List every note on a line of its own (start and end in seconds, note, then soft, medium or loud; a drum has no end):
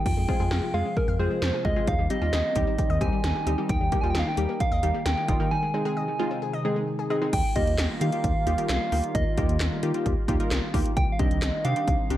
0.06 0.15 F2 loud
0.06 1.86 C3 medium
0.06 0.16 F3 medium
0.06 1.86 F3 medium
0.06 1.86 G#3 medium
0.06 1.86 F4 medium
0.06 0.76 G5 loud
0.06 kick loud
0.06 crash medium
0.17 0.27 F2 loud
0.17 0.27 G#3 medium
0.29 0.38 G#3 medium
0.29 0.38 C4 medium
0.29 0.38 F4 medium
0.29 0.38 G#4 medium
0.29 kick medium
0.40 0.49 F2 medium
0.40 0.59 G#3 medium
0.40 0.59 C4 medium
0.40 0.59 F4 medium
0.40 0.59 G#4 medium
0.40 0.50 G#4 medium
0.51 0.61 F2 loud
0.51 0.61 F5 medium
0.51 snare loud
0.63 0.72 F3 medium
0.74 0.83 F2 loud
0.74 0.84 G#3 medium
0.74 0.93 G#3 medium
0.74 0.93 C4 medium
0.74 0.93 F4 medium
0.74 0.93 G#4 medium
0.74 0.96 F5 loud
0.85 0.95 C4 medium
0.97 1.06 G#4 medium
0.97 1.18 A#4 loud
0.97 kick medium
1.08 1.17 F2 medium
1.08 1.18 F5 loud
1.19 1.29 F2 loud
1.19 1.29 F3 medium
1.19 1.38 G#3 medium
1.19 1.38 C4 medium
1.19 1.38 F4 medium
1.19 1.38 G#4 medium
1.19 1.62 C5 loud
1.31 1.41 G#3 medium
1.42 1.52 F2 medium
1.42 snare loud
1.53 1.63 G#4 medium
1.65 1.74 D2 medium
1.65 1.74 G#3 medium
1.65 1.74 C4 medium
1.65 1.74 F4 medium
1.65 1.74 G#4 medium
1.65 1.89 D#5 loud
1.65 1.75 F5 medium
1.65 kick medium
1.76 1.86 F3 medium
1.76 1.88 G#3 medium
1.76 1.88 C4 medium
1.76 1.88 F4 medium
1.76 1.88 G#4 medium
1.87 1.97 D#2 loud
1.87 1.97 D#3 medium
1.87 3.68 D#3 medium
1.87 5.48 G3 medium
1.87 3.68 C4 medium
1.87 5.48 D#4 medium
1.87 2.10 F5 loud
1.87 kick loud
1.87 closed hi-hat medium
1.99 2.08 D#2 loud
1.99 2.09 G3 medium
2.10 2.20 G3 medium
2.10 2.20 C4 medium
2.10 2.20 D#4 medium
2.10 2.20 G4 medium
2.10 3.03 D#5 loud
2.10 closed hi-hat medium
2.22 2.31 D#2 loud
2.22 2.40 G3 medium
2.22 2.40 C4 medium
2.22 2.40 D#4 medium
2.22 2.40 F4 medium
2.22 2.31 G4 medium
2.33 2.42 D#2 loud
2.33 2.43 D#5 medium
2.33 snare loud
2.33 closed hi-hat medium
2.44 2.54 D#3 medium
2.56 2.65 D#2 loud
2.56 2.74 G3 medium
2.56 2.66 G3 medium
2.56 2.74 C4 medium
2.56 2.74 D#4 medium
2.56 2.74 G4 medium
2.56 kick medium
2.56 closed hi-hat medium
2.67 2.77 C4 medium
2.78 2.88 G4 medium
2.78 kick medium
2.78 closed hi-hat medium
2.90 2.99 D#2 loud
2.90 3.00 D#5 loud
3.01 3.11 D#2 loud
3.01 3.11 D#3 medium
3.01 3.20 G3 medium
3.01 3.20 C4 medium
3.01 3.20 D#4 medium
3.01 3.20 G4 medium
3.01 3.71 G#5 loud
3.01 kick loud
3.01 closed hi-hat medium
3.13 3.22 G3 medium
3.24 3.33 D#2 loud
3.24 snare loud
3.24 closed hi-hat medium
3.35 3.45 G4 medium
3.47 3.56 D2 medium
3.47 3.56 G3 medium
3.47 3.56 C4 medium
3.47 3.56 D#4 medium
3.47 3.56 G4 medium
3.47 3.56 D#5 medium
3.47 closed hi-hat medium
3.58 3.68 D#3 medium
3.58 3.69 G3 medium
3.58 3.69 C4 medium
3.58 3.69 D#4 medium
3.58 3.69 G4 medium
3.69 3.79 D#2 loud
3.69 3.79 D#3 medium
3.69 7.29 D#3 medium
3.69 5.49 A#3 medium
3.69 4.03 G5 loud
3.69 kick loud
3.69 closed hi-hat medium
3.81 3.90 D#2 medium
3.81 3.91 G3 medium
3.92 4.02 G3 medium
3.92 4.02 A#3 medium
3.92 4.02 D#4 medium
3.92 4.02 G4 medium
3.92 kick medium
3.92 closed hi-hat medium
4.01 4.13 D#2 medium
4.01 4.22 G3 medium
4.01 4.22 A#3 medium
4.01 4.22 D#4 medium
4.01 4.22 F4 medium
4.01 4.13 G4 medium
4.01 4.12 G#5 medium
4.10 4.21 G5 medium
4.15 4.24 D#2 loud
4.15 4.25 D#5 medium
4.15 snare loud
4.15 closed hi-hat medium
4.19 4.30 F5 medium
4.26 4.36 D#3 medium
4.26 4.37 G5 medium
4.37 4.47 D#2 loud
4.37 4.47 G3 medium
4.37 4.56 G3 medium
4.37 4.56 A#3 medium
4.37 4.56 D#4 medium
4.37 4.56 G4 medium
4.37 4.62 G5 medium
4.37 closed hi-hat medium
4.49 4.59 A#3 medium
4.60 4.70 G4 medium
4.60 5.07 F5 loud
4.60 kick medium
4.60 closed hi-hat medium
4.72 4.81 D#2 medium
4.72 4.81 D#5 loud
4.83 4.92 D#2 loud
4.83 4.93 D#3 medium
4.83 5.02 G3 medium
4.83 5.02 A#3 medium
4.83 5.02 D#4 medium
4.83 5.02 G4 medium
4.83 closed hi-hat medium
4.94 5.04 G3 medium
5.06 5.15 D#2 loud
5.06 5.53 G5 loud
5.06 snare loud
5.06 closed hi-hat medium
5.17 5.27 G4 medium
5.28 5.38 G1 medium
5.28 5.38 G3 medium
5.28 5.38 A#3 medium
5.28 5.38 D#4 medium
5.28 5.38 F4 medium
5.28 5.38 D#5 medium
5.28 kick medium
5.28 closed hi-hat medium
5.40 5.50 D#3 medium
5.40 5.51 G3 medium
5.40 5.51 A#3 medium
5.40 5.51 D#4 medium
5.40 5.51 A#4 medium
5.51 7.31 C3 medium
5.51 5.61 D#3 medium
5.51 7.31 G#3 medium
5.51 7.31 D#4 medium
5.51 6.88 G#5 loud
5.63 5.72 G#3 medium
5.74 5.83 G#3 medium
5.74 5.84 C4 medium
5.74 5.83 C4 medium
5.74 5.83 D#4 medium
5.74 5.83 G#4 medium
5.85 6.04 G#3 medium
5.85 6.04 C4 medium
5.85 6.04 D#4 medium
5.85 6.04 G#4 medium
5.85 5.95 G#4 medium
5.97 6.06 D#5 medium
6.08 6.18 D#3 medium
6.19 6.38 G#3 loud
6.19 6.29 G#3 medium
6.19 6.38 C4 medium
6.19 6.38 D#4 medium
6.19 6.38 F4 loud
6.31 6.41 C4 medium
6.42 6.52 G#4 medium
6.53 6.63 D#5 loud
6.65 6.75 D#3 medium
6.65 6.84 G#3 medium
6.65 6.84 C4 medium
6.65 6.84 D#4 medium
6.65 6.84 G#4 loud
6.76 6.86 G#3 medium
6.99 7.09 G#4 medium
7.10 7.20 G#3 medium
7.10 7.20 C4 medium
7.10 7.20 D#4 medium
7.10 7.20 G#4 loud
7.10 7.20 D#5 medium
7.22 7.31 D#3 medium
7.22 7.33 G#3 medium
7.22 7.33 C4 medium
7.22 7.33 D#4 medium
7.22 7.33 G#4 loud
7.33 7.43 D#2 loud
7.33 10.93 D#3 medium
7.33 12.17 G3 medium
7.33 10.93 A#3 medium
7.33 10.93 F4 medium
7.33 7.57 G5 loud
7.33 kick loud
7.33 closed hi-hat medium
7.33 crash loud
7.56 7.65 D#2 loud
7.56 7.75 A#3 medium
7.56 7.75 D#4 medium
7.56 7.75 F4 medium
7.56 7.75 G4 medium
7.56 8.03 D#5 loud
7.56 kick medium
7.56 closed hi-hat medium
7.67 7.77 D#2 loud
7.67 closed hi-hat medium
7.78 7.88 D#2 loud
7.78 snare loud
7.78 clap medium
7.78 closed hi-hat medium
8.01 8.11 D#3 loud
8.01 8.11 A#3 medium
8.01 8.11 D#4 medium
8.01 8.11 F4 medium
8.01 8.11 G4 medium
8.01 8.69 F5 loud
8.01 closed hi-hat medium
8.12 8.31 A#3 medium
8.12 8.31 D#4 medium
8.12 8.31 F4 medium
8.12 8.31 G4 medium
8.12 closed hi-hat medium
8.24 8.33 D#2 loud
8.24 kick medium
8.24 closed hi-hat medium
8.47 8.56 D#2 loud
8.47 8.56 A#3 medium
8.47 8.56 D#4 medium
8.47 8.56 F4 medium
8.47 8.56 G4 medium
8.47 closed hi-hat medium
8.58 8.77 A#3 medium
8.58 8.77 D#4 medium
8.58 8.77 F4 medium
8.58 8.77 G4 medium
8.58 closed hi-hat medium
8.69 8.79 C2 medium
8.69 9.16 F5 loud
8.69 snare loud
8.69 clap medium
8.69 closed hi-hat medium
8.92 9.02 D2 loud
8.92 9.11 A#3 medium
8.92 9.11 D#4 medium
8.92 9.11 F4 medium
8.92 9.11 G4 medium
8.92 open hi-hat medium
9.04 closed hi-hat medium
9.15 9.24 D#2 loud
9.15 10.06 D#5 medium
9.15 kick loud
9.15 closed hi-hat medium
9.38 9.47 D#2 loud
9.38 9.56 A#3 medium
9.38 9.56 D#4 medium
9.38 9.56 F4 medium
9.38 9.56 G4 medium
9.38 kick medium
9.38 closed hi-hat medium
9.49 9.58 D#2 loud
9.49 closed hi-hat medium
9.60 9.70 D#2 loud
9.60 snare loud
9.60 clap medium
9.60 closed hi-hat medium
9.83 9.93 D#3 loud
9.83 9.92 A#3 medium
9.83 9.92 D#4 medium
9.83 9.92 F4 medium
9.83 9.92 G4 loud
9.83 closed hi-hat medium
9.94 10.13 A#3 medium
9.94 10.13 D#4 medium
9.94 10.13 F4 medium
9.94 10.13 G4 medium
9.94 closed hi-hat medium
10.06 10.15 D#2 loud
10.06 kick medium
10.06 closed hi-hat medium
10.28 10.38 D#2 loud
10.28 10.38 A#3 medium
10.28 10.38 D#4 medium
10.28 10.38 F4 medium
10.28 10.38 G4 loud
10.28 kick loud
10.28 closed hi-hat medium
10.40 10.59 A#3 medium
10.40 10.59 D#4 medium
10.40 10.59 F4 medium
10.40 10.59 A#4 medium
10.40 closed hi-hat medium
10.51 10.61 C2 loud
10.51 snare loud
10.51 clap medium
10.51 closed hi-hat medium
10.74 10.83 D2 loud
10.74 10.93 A#3 medium
10.74 10.93 D#4 medium
10.74 10.93 F4 medium
10.74 10.93 G4 loud
10.74 kick medium
10.74 open hi-hat medium
10.86 closed hi-hat medium
10.97 11.06 C2 loud
10.97 12.17 D#3 medium
10.97 12.17 C4 medium
10.97 12.17 D#4 medium
10.97 11.04 G5 loud
10.97 kick loud
10.97 closed hi-hat medium
11.12 11.21 F5 medium
11.19 11.29 C2 loud
11.19 11.38 C4 medium
11.19 11.38 D4 medium
11.19 11.38 D#4 medium
11.19 11.38 G4 medium
11.19 11.64 D#5 loud
11.19 kick medium
11.19 closed hi-hat medium
11.31 11.40 C2 loud
11.31 closed hi-hat medium
11.42 11.52 C2 loud
11.42 snare loud
11.42 clap medium
11.42 closed hi-hat medium
11.65 11.74 C3 loud
11.65 11.74 C4 medium
11.65 11.74 D4 medium
11.65 11.74 D#4 medium
11.65 11.74 G4 medium
11.65 12.17 F5 loud
11.65 closed hi-hat medium
11.76 11.95 C4 medium
11.76 11.95 D4 medium
11.76 11.95 D#4 medium
11.76 11.95 G4 medium
11.76 closed hi-hat medium
11.88 11.97 C2 loud
11.88 kick medium
11.88 closed hi-hat medium
12.10 12.17 C2 loud
12.10 12.17 C4 medium
12.10 12.17 D4 medium
12.10 12.17 D#4 medium
12.10 12.17 G4 medium
12.10 closed hi-hat medium